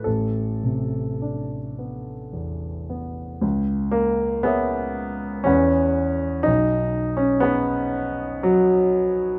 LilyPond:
\new Staff \with { instrumentName = "Grand piano" } { \time 3/4 \key a \minor \tempo 4 = 59 << { a,,8 c8 d'8 b8 e,8 b8 | \key cis \dorian cis,4 <gis' cis'' e''>4 <e, gis' b' fis'' b''>4 | b,,4 <gis' cis'' fis'' b''>2 | } \\ { a'2 r4 | r8 ais8 b4 cis'4 | dis'8. cis'16 b4 fis4 | } >> }